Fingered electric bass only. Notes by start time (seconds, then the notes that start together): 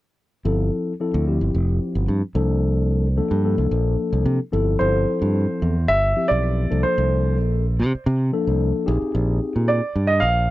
0.45 G1
1.14 D2
1.41 G1
1.54 F1
1.95 G1
2.08 G2
2.35 C2
3.31 G2
3.58 C2
3.71 A#1
4.13 C2
4.25 C3
4.53 G1
4.81 G1
5.22 G2
5.62 E2
5.89 G1
6.31 B1
6.72 C2
6.98 C2
7.40 A#1
7.79 C3
7.95 muted fingered electric bass stroke
8.06 C3
8.47 C2
8.88 A#1
9.02 muted fingered electric bass stroke
9.15 A#1
9.56 A#2
9.96 G2
10.22 A#1